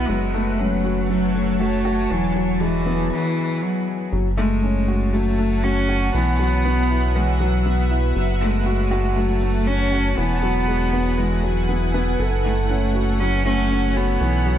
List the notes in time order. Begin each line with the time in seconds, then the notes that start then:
Already playing: E3 F#3 B3 E4 F#5
0.09 F#1 F#3 G#3 C#5 A5
0.34 A3
0.59 F#3 C#4
0.84 F#4
1.09 F#3
1.35 A3
1.59 A3 F#4
1.85 F#4
2.10 E1 E3 F#3
2.36 F#3
2.61 E3 G#3
2.86 B3
3.11 E3
3.62 F#3
4.12 F#1 F#3 C#5 F#5 A5
4.37 G#3 A3
4.63 C#4
4.88 F#4
5.13 F#3 A3
5.39 A3
5.64 C#4 F#4
5.89 F#4
6.14 B1 E3 B3 B4 E5
6.39 F#3
6.65 B3
6.90 E4
7.15 E3 G#3
7.40 F#3
7.66 B3
7.91 E4
8.16 F#1 F#3 C#5 F#5 A5
8.41 G#3 A3
8.66 F#4
8.91 F#4
9.16 F#3 A3
9.42 A3
9.67 C#4
9.92 F#4
10.17 E1 E3 B3 E4 B4 G#5
10.43 F#3
10.68 G#3
10.93 B3
11.18 E3 G#3
11.44 F#3
11.69 B3
11.94 B3
12.19 F#1 A4 C#5
12.44 A3
12.70 C#4
12.95 F#4
13.20 F#3 C#4
13.45 A3 C#4
13.70 C#4
13.96 B3 F#4
14.21 B1 E3 B3 B4 E5
14.46 F#3